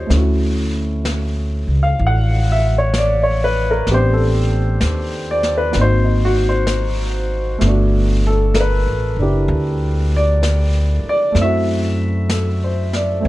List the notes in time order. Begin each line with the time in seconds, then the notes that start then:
Already playing: G3 A#3 C#4 F4 C5 C#5 D#5
0.06 D2 A3 C#4
0.10 E4, brush sweep, snare
0.17 F#4
1.05 brush sweep, snare, hi-hat pedal
1.67 C#2
1.83 F5
1.99 A1, brush sweep
2.07 F#5
2.52 E5
2.78 C#5
2.94 brush sweep, snare, hi-hat pedal
2.98 D5
3.23 C#5
3.44 B4
3.71 A#4
3.87 A1 B3, brush sweep, snare
3.91 C4 D4 G4 C5
4.13 A4
4.81 D#2, brush sweep, snare, hi-hat pedal
5.31 D5
5.43 snare
5.58 B4
5.71 G#1 A#3 C4, brush sweep, snare
5.79 D#4 F#4 C5
6.04 D#4
6.25 F#4
6.49 C5
6.67 brush sweep, snare, hi-hat pedal
7.58 G1 A3 B3, brush sweep, snare
7.66 D4 F#4
8.27 A4
8.54 A#4, brush sweep, snare, hi-hat pedal
8.60 B4
8.87 A1
9.16 F#1 D4
9.21 E4 G4
9.48 D2, brush sweep
10.16 D5
10.43 brush sweep, snare, hi-hat pedal
11.04 muted upright bass stroke
11.09 D5
11.32 F#2 A3, brush sweep, snare
11.36 C4 E4
11.42 F#4 E5
12.30 A4, brush sweep, snare, hi-hat pedal
12.64 C5
12.93 D5, snare
13.20 A3 C4
13.25 B1, brush sweep